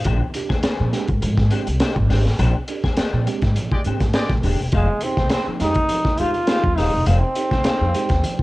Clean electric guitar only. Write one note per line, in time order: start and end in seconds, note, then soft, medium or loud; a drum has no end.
0.05 0.20 D4 loud
0.05 0.20 G#4 loud
0.05 0.20 C5 loud
0.05 0.20 G5 loud
0.21 muted clean electric guitar stroke medium
0.35 muted clean electric guitar stroke soft
0.49 0.60 D4 medium
0.49 0.60 G#4 medium
0.49 0.60 C5 medium
0.49 0.60 G#5 medium
0.63 0.90 D4 medium
0.63 0.90 G#4 medium
0.63 0.91 C5 medium
0.63 0.91 G#5 medium
0.93 muted clean electric guitar stroke soft
1.08 muted clean electric guitar stroke soft
1.22 muted clean electric guitar stroke soft
1.51 1.63 D4 medium
1.51 1.63 G#4 medium
1.51 1.63 C5 medium
1.51 1.63 G5 medium
1.67 muted clean electric guitar stroke medium
1.80 1.95 D4 medium
1.80 1.95 G#4 medium
1.80 1.95 C5 loud
1.80 1.94 G5 loud
1.95 muted clean electric guitar stroke soft
2.09 2.21 D4 medium
2.09 2.21 G#4 medium
2.09 2.21 C5 medium
2.09 2.22 G5 medium
2.25 muted clean electric guitar stroke soft
2.39 2.54 D4 medium
2.39 2.54 G#4 loud
2.39 2.54 C5 loud
2.39 2.54 G5 loud
2.55 muted clean electric guitar stroke medium
2.69 muted clean electric guitar stroke soft
2.84 2.95 D4 soft
2.84 2.95 G#4 medium
2.84 2.94 C5 medium
2.84 2.94 G#5 medium
2.98 3.25 D4 medium
2.98 3.25 G#4 loud
2.98 3.25 C5 medium
2.98 3.26 G5 loud
3.27 muted clean electric guitar stroke soft
3.43 muted clean electric guitar stroke medium
3.57 muted clean electric guitar stroke soft
3.86 3.97 D4 medium
3.86 3.98 G#4 medium
3.86 3.98 C5 medium
3.86 3.98 G5 medium
4.02 muted clean electric guitar stroke soft
4.31 muted clean electric guitar stroke soft
4.45 4.59 D4 medium
4.45 4.59 G#4 medium
4.45 4.59 C5 medium
4.45 4.59 G5 medium
4.60 muted clean electric guitar stroke soft
4.74 4.88 D#4 medium
4.74 4.88 G#4 loud
4.74 4.88 C5 loud
4.74 4.89 F5 loud
4.90 muted clean electric guitar stroke soft
5.03 muted clean electric guitar stroke soft
5.19 5.29 D#4 soft
5.19 5.29 G#4 medium
5.19 5.29 C5 medium
5.19 5.28 G5 medium
5.32 5.59 D#4 medium
5.32 5.59 G#4 medium
5.32 5.59 C5 medium
5.32 5.60 G5 medium
5.62 muted clean electric guitar stroke soft
5.77 muted clean electric guitar stroke soft
5.90 muted clean electric guitar stroke soft
6.20 6.31 D#4 medium
6.20 6.31 G#4 medium
6.20 6.31 C5 medium
6.20 6.31 F5 medium
6.49 6.63 D#4 medium
6.49 6.64 G#4 medium
6.49 6.63 C5 medium
6.49 6.63 F5 medium
6.64 muted clean electric guitar stroke soft
6.76 6.89 D#4 medium
6.76 6.89 G#4 medium
6.76 6.89 C5 medium
6.76 6.89 F5 medium
7.06 7.21 D#4 medium
7.06 7.22 G#4 medium
7.06 7.22 C5 loud
7.06 7.21 F5 loud
7.22 muted clean electric guitar stroke soft
7.36 muted clean electric guitar stroke soft
7.51 7.62 D#4 medium
7.51 7.62 G#4 medium
7.51 7.62 C5 medium
7.51 7.62 G5 medium
7.65 7.92 D#4 medium
7.65 7.92 G#4 medium
7.65 7.93 C5 medium
7.65 7.93 F5 medium
7.94 muted clean electric guitar stroke soft
8.09 muted clean electric guitar stroke medium
8.23 muted clean electric guitar stroke soft